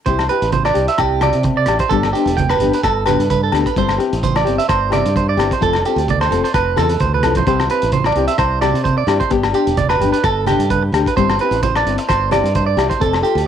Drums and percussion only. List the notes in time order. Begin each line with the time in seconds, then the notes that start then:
0.06 kick, closed hi-hat, muted conga
0.19 cross-stick, low agogo
0.29 closed hi-hat
0.42 closed hi-hat
0.52 kick, closed hi-hat, muted conga, high conga
0.65 cross-stick, low agogo
0.75 closed hi-hat
0.88 closed hi-hat
0.98 kick, cross-stick, closed hi-hat, low agogo
1.21 cross-stick, closed hi-hat, high conga, low agogo
1.33 closed hi-hat
1.43 kick, closed hi-hat, high conga
1.66 cross-stick, closed hi-hat, low agogo
1.79 kick, closed hi-hat
1.91 kick, closed hi-hat
2.03 cross-stick, low agogo
2.15 closed hi-hat
2.27 closed hi-hat
2.38 kick, closed hi-hat, muted conga, high conga
2.50 cross-stick, low agogo
2.60 closed hi-hat, low conga
2.74 closed hi-hat
2.84 kick, cross-stick, closed hi-hat, muted conga, low agogo
3.06 cross-stick, closed hi-hat, muted conga, high conga, low conga, low agogo
3.20 closed hi-hat
3.30 kick, closed hi-hat, high conga
3.52 cross-stick, closed hi-hat, low agogo
3.66 kick, closed hi-hat
3.76 kick, closed hi-hat, muted conga
3.89 cross-stick, low agogo
4.00 closed hi-hat
4.13 closed hi-hat
4.23 kick, closed hi-hat, muted conga, high conga
4.36 cross-stick, low agogo
4.47 closed hi-hat
4.59 closed hi-hat
4.69 kick, cross-stick, closed hi-hat, muted conga, low agogo
4.92 cross-stick, closed hi-hat, muted conga, high conga, low agogo
5.06 closed hi-hat
5.16 kick, closed hi-hat, high conga
5.39 cross-stick, closed hi-hat, low agogo
5.51 kick, closed hi-hat
5.62 kick, closed hi-hat
5.73 cross-stick, low agogo
5.85 closed hi-hat
5.98 closed hi-hat
6.08 kick, closed hi-hat, muted conga, high conga
6.21 cross-stick, low agogo
6.32 closed hi-hat, low conga
6.45 closed hi-hat
6.54 kick, cross-stick, closed hi-hat, low agogo
6.77 cross-stick, closed hi-hat, high conga, low conga, low agogo
6.89 closed hi-hat
7.00 kick, closed hi-hat, high conga
7.15 high conga
7.23 cross-stick, closed hi-hat, low conga, low agogo
7.35 kick, closed hi-hat, low conga
7.47 kick, closed hi-hat
7.60 cross-stick, low agogo
7.70 closed hi-hat
7.82 closed hi-hat
7.92 kick, closed hi-hat, muted conga, high conga
8.04 cross-stick, low agogo
8.16 closed hi-hat
8.28 closed hi-hat
8.38 kick, cross-stick, closed hi-hat, low agogo
8.62 cross-stick, closed hi-hat, muted conga, high conga, low agogo
8.75 closed hi-hat
8.85 kick, closed hi-hat, high conga
9.08 cross-stick, closed hi-hat, low agogo
9.20 kick, closed hi-hat
9.31 kick, closed hi-hat
9.43 cross-stick, low agogo
9.54 closed hi-hat
9.67 closed hi-hat
9.77 kick, closed hi-hat, muted conga, high conga
9.90 cross-stick, low agogo
10.02 closed hi-hat, low conga
10.14 closed hi-hat
10.24 kick, cross-stick, closed hi-hat, muted conga, low agogo
10.47 cross-stick, closed hi-hat, muted conga, high conga, low conga, low agogo
10.60 closed hi-hat
10.70 kick, closed hi-hat, high conga
10.94 cross-stick, closed hi-hat, low agogo
11.06 kick, closed hi-hat
11.17 kick, closed hi-hat, muted conga
11.30 cross-stick, low agogo
11.39 closed hi-hat
11.52 closed hi-hat
11.63 kick, closed hi-hat, muted conga, high conga
11.76 cross-stick, low agogo
11.87 closed hi-hat
11.98 closed hi-hat
12.09 kick, cross-stick, closed hi-hat, low agogo
12.31 cross-stick, closed hi-hat, muted conga, high conga, low agogo
12.46 closed hi-hat
12.55 kick, closed hi-hat, high conga
12.78 cross-stick, closed hi-hat, low agogo
12.91 kick, closed hi-hat
13.01 kick, closed hi-hat
13.13 cross-stick, low agogo
13.24 closed hi-hat
13.38 closed hi-hat